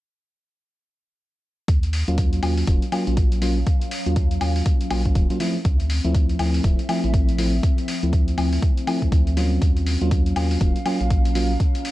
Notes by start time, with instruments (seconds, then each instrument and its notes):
1.68 sub bass D#2, ambient pad C#4, kick, closed hi-hat
1.83 closed hi-hat
1.93 open hi-hat
2.08 sub bass D#2, fm electric piano F#3 A#3 C#4 F4, closed hi-hat
2.18 kick, closed hi-hat
2.33 closed hi-hat
2.43 sub bass D#2, fm electric piano F#3 A#3 C#4 F4, open hi-hat, high woodblock
2.57 ambient pad F#3, open hi-hat
2.67 sub bass D#1, fm electric piano F#3 A#3 C#4 F4, kick, closed hi-hat
2.82 ambient pad F5, closed hi-hat
2.92 fm electric piano F#3 A#3 C#4 F4, open hi-hat, high woodblock
3.07 sub bass A#1, fm electric piano F#3 A#3 C#4 F4, closed hi-hat
3.17 kick, closed hi-hat
3.32 closed hi-hat
3.42 fm electric piano F#3 A#3 C#4 F4, open hi-hat
3.67 kick, closed hi-hat
3.81 closed hi-hat
3.91 open hi-hat
4.06 sub bass D#2, fm electric piano F#3 A#3 C#4 F4, closed hi-hat
4.16 kick, closed hi-hat
4.31 closed hi-hat
4.41 sub bass D#2, fm electric piano F#3 A#3 C#4 F4, open hi-hat, high woodblock
4.56 open hi-hat
4.66 kick, closed hi-hat
4.81 closed hi-hat
4.91 sub bass A#1, fm electric piano F#3 A#3 C#4 F4, open hi-hat, high woodblock
5.05 fm electric piano F#3 A#3 C#4 F4, kick, closed hi-hat
5.15 sub bass D#1, kick, closed hi-hat
5.30 fm electric piano F#3 A#3 C#4 F4, closed hi-hat
5.40 fm electric piano F3 A3 C4 E4, ambient pad C4, open hi-hat
5.59 ambient pad F3
5.65 sub bass D2, kick, closed hi-hat
5.80 closed hi-hat
5.90 open hi-hat
5.95 ambient pad E5
6.05 sub bass D2, fm electric piano F3 A3 C4 E4, closed hi-hat
6.15 kick, closed hi-hat
6.29 closed hi-hat
6.39 sub bass D2, fm electric piano F3 A3 C4 E4, open hi-hat, high woodblock
6.54 open hi-hat
6.64 sub bass D1, fm electric piano F3 A3 C4 E4, kick, closed hi-hat
6.79 closed hi-hat
6.89 fm electric piano F3 A3 C4 E4, open hi-hat, high woodblock
7.04 sub bass A1, fm electric piano F3 A3 C4 E4, closed hi-hat
7.14 kick, closed hi-hat
7.29 closed hi-hat
7.38 fm electric piano F3 A3 C4 E4, open hi-hat
7.63 kick, closed hi-hat
7.78 closed hi-hat
7.88 open hi-hat
8.03 sub bass D2, fm electric piano F3 A3 C4 E4, closed hi-hat
8.13 kick, closed hi-hat
8.28 closed hi-hat
8.38 sub bass D2, fm electric piano F3 A3 C4 E4, open hi-hat, high woodblock
8.53 open hi-hat
8.62 kick, closed hi-hat
8.77 closed hi-hat
8.87 fm electric piano F3 A3 C4 E4, open hi-hat, high woodblock
9.02 sub bass D2, kick, closed hi-hat
9.12 kick, closed hi-hat
9.27 closed hi-hat
9.37 fm electric piano F#3 A#3 C#4 F4, open hi-hat
9.62 sub bass D#2, ambient pad C#4, kick, closed hi-hat
9.77 closed hi-hat
9.82 ambient pad F5
9.87 open hi-hat
10.01 sub bass D#2, fm electric piano F#3 A#3 C#4 F4, closed hi-hat
10.11 kick, closed hi-hat
10.18 ambient pad F#3
10.26 closed hi-hat
10.36 sub bass D#2, fm electric piano F#3 A#3 C#4 F4, open hi-hat, high woodblock
10.51 open hi-hat
10.61 sub bass D#1, fm electric piano F#3 A#3 C#4 F4, kick, closed hi-hat
10.76 closed hi-hat
10.86 fm electric piano F#3 A#3 C#4 F4, open hi-hat, high woodblock
11.01 sub bass A#1, fm electric piano F#3 A#3 C#4 F4, closed hi-hat
11.10 kick, closed hi-hat
11.25 closed hi-hat
11.35 fm electric piano F#3 A#3 C#4 F4, open hi-hat
11.60 kick, closed hi-hat
11.75 closed hi-hat
11.85 open hi-hat